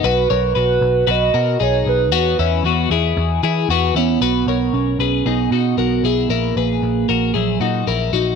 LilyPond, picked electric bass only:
\new Staff \with { instrumentName = "Picked electric bass" } { \clef bass \time 4/4 \key b \major \tempo 4 = 115 b,,8 b,,8 b,,8 b,,8 b,,8 b,8 b,,8 b,,8 | e,8 e,8 e,8 e,8 e,8 e8 e,8 e,8 | b,,8 b,,8 b,,8 b,,8 b,,8 b,8 b,,8 b,,8 | ais,,8 ais,,8 ais,,8 ais,,8 ais,,8 ais,8 ais,,8 ais,,8 | }